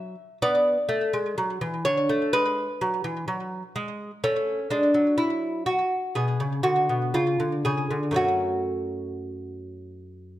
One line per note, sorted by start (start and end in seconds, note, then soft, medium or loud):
0.00 0.15 F#3 medium
0.00 0.37 E5 loud
0.42 0.76 B3 medium
0.42 1.82 D5 loud
0.89 1.12 A3 medium
1.13 1.36 G#3 medium
1.38 1.60 F#3 medium
1.61 1.84 E3 medium
1.85 2.08 D3 medium
1.85 2.31 C#5 loud
2.09 2.32 A3 medium
2.33 2.67 G#3 medium
2.33 4.19 B4 medium
2.81 3.03 F#3 medium
3.04 3.27 E3 medium
3.28 3.62 F#3 medium
3.76 4.10 G#3 medium
4.24 4.58 A3 medium
4.24 4.70 C#4 medium
4.70 4.94 G#3 medium
4.70 5.17 D4 medium
4.94 5.81 F#3 medium
5.18 5.65 E4 medium
5.66 6.13 F#4 medium
6.15 6.39 B2 medium
6.15 6.62 G#4 medium
6.40 6.63 C#3 medium
6.63 6.88 D3 medium
6.63 7.12 F#4 medium
6.89 7.13 B2 medium
7.14 7.38 C#3 medium
7.14 7.62 F4 medium
7.40 7.63 D3 medium
7.65 7.89 C#3 medium
7.65 8.14 G#4 medium
7.91 8.14 D3 medium
8.11 10.39 F#2 medium
8.11 10.39 A3 soft
8.11 10.39 C#4 soft
8.16 10.39 F#4 medium